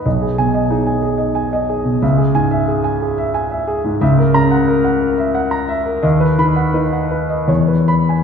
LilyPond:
<<
  \new Staff \with { instrumentName = "Grand piano" } { \time 3/4 \key cis \dorian \tempo 4 = 89 << { r8 gis''8 r2 | r8 gis''8 r2 | r8 ais''8 r2 | r8 b''8 r4. b''8 | } \\ { dis''16 gis'8 dis''16 gis'16 gis''16 gis'16 dis''16 gis''16 dis''16 gis'16 b,16 | e''16 gis'8 e''16 gis'16 gis''16 gis'16 e''16 gis''16 e''16 gis'16 gis,16 | e''16 ais'8 fis''16 ais'16 fis''16 ais'16 e''16 fis''16 ais''16 e''16 ais'16 | dis''16 b'8 fis''16 b'16 fis''16 b'16 dis''16 cis''16 b'8 gis''16 | } >> }
  \new Staff \with { instrumentName = "Grand piano" } { \clef bass \time 3/4 \key cis \dorian b,,8 b,8 dis'4 r4 | cis,8 gis,4 r4. | cis,8 cis4 r4. | dis,8 dis8 dis'4 e,4 | }
>>